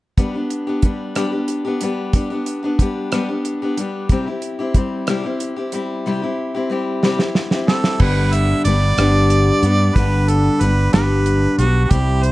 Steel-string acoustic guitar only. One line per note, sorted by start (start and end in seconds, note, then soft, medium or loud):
0.17 0.34 G3 medium
0.17 0.35 B3 medium
0.17 0.34 D4 medium
0.17 0.33 G4 medium
0.34 0.68 B3 soft
0.34 0.67 D4 soft
0.34 0.66 G4 soft
0.67 0.83 B3 soft
0.67 0.84 D4 soft
0.67 0.83 G4 soft
0.83 1.14 G3 soft
0.83 1.15 B3 medium
0.83 1.15 D4 medium
0.83 1.16 G4 soft
1.16 1.32 G3 medium
1.16 1.33 B3 medium
1.16 1.32 D4 medium
1.16 1.30 G4 medium
1.32 1.66 B3 soft
1.32 1.65 D4 soft
1.32 1.63 G4 soft
1.65 1.81 B3 soft
1.65 1.82 D4 soft
1.65 1.81 G4 soft
1.81 2.12 G3 medium
1.81 2.13 B3 medium
1.81 2.14 D4 medium
1.81 2.15 G4 medium
2.14 2.30 G3 medium
2.14 2.31 B3 medium
2.14 2.31 D4 medium
2.14 2.29 G4 medium
2.30 2.64 B3 soft
2.30 2.63 D4 soft
2.30 2.61 G4 soft
2.63 2.79 B3 soft
2.63 2.80 D4 soft
2.63 2.79 G4 soft
2.79 3.11 G3 soft
2.79 3.11 B3 medium
2.79 3.12 D4 medium
2.79 3.12 G4 medium
3.12 3.28 G3 medium
3.12 3.29 B3 medium
3.12 3.28 D4 medium
3.12 3.27 G4 medium
3.28 3.62 B3 soft
3.28 3.62 D4 soft
3.28 3.61 G4 soft
3.62 3.78 B3 soft
3.62 3.78 D4 soft
3.62 3.78 G4 medium
3.77 4.10 G3 medium
3.77 4.11 B3 medium
3.77 4.11 D4 medium
3.77 4.11 G4 medium
4.11 4.27 C3 medium
4.11 4.27 G3 medium
4.11 4.27 C4 medium
4.11 4.26 E4 medium
4.11 4.25 G4 medium
4.26 4.60 C4 soft
4.26 4.59 E4 soft
4.26 4.58 G4 soft
4.59 4.75 C4 soft
4.59 4.76 E4 soft
4.59 4.75 G4 soft
4.75 5.07 G3 medium
4.75 5.08 C4 soft
4.75 5.09 E4 medium
4.75 5.09 G4 medium
5.08 5.24 C3 medium
5.08 5.24 G3 medium
5.08 5.25 C4 medium
5.08 5.24 E4 medium
5.08 5.22 G4 medium
5.23 5.58 C4 soft
5.23 5.57 E4 soft
5.23 5.55 G4 soft
5.56 5.72 C4 soft
5.56 5.73 E4 soft
5.56 5.73 G4 soft
5.72 6.05 G3 soft
5.72 6.06 C4 medium
5.72 6.06 E4 medium
5.72 6.06 G4 medium
6.06 6.22 C3 medium
6.06 6.22 G3 medium
6.06 6.22 C4 medium
6.06 6.22 E4 medium
6.06 6.21 G4 medium
6.22 6.56 C4 soft
6.22 6.55 E4 soft
6.22 6.53 G4 soft
6.54 6.70 C4 soft
6.54 6.71 E4 soft
6.54 6.71 G4 soft
6.70 7.03 G3 soft
6.70 7.03 C4 soft
6.70 7.03 E4 medium
6.70 7.04 G4 medium
7.03 7.19 C3 medium
7.03 7.20 G3 medium
7.03 7.20 C4 medium
7.03 7.20 E4 medium
7.03 7.19 G4 medium
7.20 7.53 C4 soft
7.20 7.52 E4 soft
7.20 7.50 G4 soft
7.52 7.67 C4 soft
7.52 7.68 E4 soft
7.52 7.68 G4 medium
7.67 8.00 G3 medium
7.67 8.00 C4 medium
7.67 8.01 E4 medium
7.67 8.00 G4 medium
8.00 8.65 G2 medium
8.00 8.66 D3 medium
8.00 8.66 G3 medium
8.00 8.66 B3 medium
8.00 8.66 D4 medium
8.00 8.68 G4 medium
8.66 8.99 G3 medium
8.66 8.98 B3 medium
8.66 8.98 D4 medium
8.66 8.98 G4 medium
8.99 9.65 G2 medium
8.99 9.65 D3 medium
8.99 9.65 G3 medium
8.99 9.64 B3 medium
8.99 9.63 D4 medium
8.99 9.63 G4 medium
9.63 9.97 G3 soft
9.63 9.97 B3 soft
9.63 9.97 D4 soft
9.63 9.96 G4 medium
9.97 10.62 G2 medium
9.97 10.62 D3 medium
9.97 10.61 G3 medium
9.97 10.61 B3 medium
9.97 10.62 D4 medium
9.97 10.64 G4 medium
10.61 10.94 G3 soft
10.61 10.94 B3 soft
10.61 10.94 D4 soft
10.61 10.94 G4 medium
10.95 11.60 G2 medium
10.95 11.60 D3 medium
10.95 11.61 G3 medium
10.95 11.60 B3 medium
10.95 11.59 D4 medium
10.95 11.59 G4 medium
11.60 11.91 G3 soft
11.60 11.93 B3 soft
11.60 11.92 D4 soft
11.60 11.92 G4 soft
11.92 12.32 C3 medium
11.92 12.32 G3 medium
11.92 12.32 C4 medium
11.92 12.32 E4 medium
11.92 12.32 G4 medium